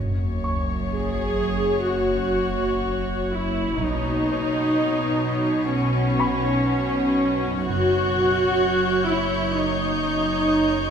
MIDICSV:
0, 0, Header, 1, 9, 480
1, 0, Start_track
1, 0, Tempo, 961538
1, 1905, Time_signature, 4, 2, 24, 8
1, 5442, End_track
2, 0, Start_track
2, 0, Title_t, "Violin section"
2, 0, Program_c, 0, 48
2, 3827, Note_on_c, 0, 85, 38
2, 3827, Note_on_c, 0, 91, 34
2, 5442, Note_off_c, 0, 85, 0
2, 5442, Note_off_c, 0, 91, 0
2, 5442, End_track
3, 0, Start_track
3, 0, Title_t, "Grand piano"
3, 0, Program_c, 1, 0
3, 57, Control_c, 1, 64, 127
3, 220, Note_on_c, 1, 85, 34
3, 1646, Note_off_c, 1, 85, 0
3, 1914, Control_c, 1, 64, 0
3, 1996, Control_c, 1, 64, 127
3, 3093, Note_on_c, 1, 83, 42
3, 3834, Control_c, 1, 64, 0
3, 3916, Control_c, 1, 64, 127
3, 4517, Note_off_c, 1, 83, 0
3, 5442, End_track
4, 0, Start_track
4, 0, Title_t, "Violin section"
4, 0, Program_c, 2, 48
4, 0, Note_on_c, 2, 73, 33
4, 1887, Note_off_c, 2, 73, 0
4, 1907, Note_on_c, 2, 73, 36
4, 3806, Note_off_c, 2, 73, 0
4, 3828, Note_on_c, 2, 73, 49
4, 5442, Note_off_c, 2, 73, 0
4, 5442, End_track
5, 0, Start_track
5, 0, Title_t, "Viola section"
5, 0, Program_c, 3, 48
5, 467, Note_on_c, 3, 68, 56
5, 927, Note_off_c, 3, 68, 0
5, 948, Note_on_c, 3, 66, 45
5, 1668, Note_off_c, 3, 66, 0
5, 1670, Note_on_c, 3, 64, 47
5, 1905, Note_on_c, 3, 63, 59
5, 1906, Note_off_c, 3, 64, 0
5, 2859, Note_off_c, 3, 63, 0
5, 2862, Note_on_c, 3, 61, 58
5, 3807, Note_off_c, 3, 61, 0
5, 3824, Note_on_c, 3, 66, 71
5, 4525, Note_off_c, 3, 66, 0
5, 4538, Note_on_c, 3, 64, 55
5, 4776, Note_on_c, 3, 63, 56
5, 4777, Note_off_c, 3, 64, 0
5, 5442, Note_off_c, 3, 63, 0
5, 5442, End_track
6, 0, Start_track
6, 0, Title_t, "Cello section"
6, 0, Program_c, 4, 48
6, 0, Note_on_c, 4, 42, 38
6, 1886, Note_off_c, 4, 42, 0
6, 1907, Note_on_c, 4, 47, 44
6, 3806, Note_off_c, 4, 47, 0
6, 3823, Note_on_c, 4, 42, 49
6, 5442, Note_off_c, 4, 42, 0
6, 5442, End_track
7, 0, Start_track
7, 0, Title_t, "Double bass section"
7, 0, Program_c, 5, 48
7, 0, Note_on_c, 5, 30, 35
7, 445, Note_off_c, 5, 30, 0
7, 1905, Note_on_c, 5, 35, 39
7, 2362, Note_off_c, 5, 35, 0
7, 3823, Note_on_c, 5, 30, 48
7, 4281, Note_off_c, 5, 30, 0
7, 5442, End_track
8, 0, Start_track
8, 0, Title_t, "Synth drone"
8, 0, Program_c, 6, 95
8, 0, Note_on_c, 6, 30, 52
8, 1886, Note_off_c, 6, 30, 0
8, 1903, Note_on_c, 6, 35, 56
8, 3824, Note_off_c, 6, 35, 0
8, 3827, Note_on_c, 6, 30, 50
8, 5442, Note_off_c, 6, 30, 0
8, 5442, End_track
9, 0, Start_track
9, 0, Title_t, "Sub drop"
9, 0, Program_c, 7, 103
9, 0, Note_on_c, 7, 60, 38
9, 1905, Note_off_c, 7, 60, 0
9, 5442, End_track
0, 0, End_of_file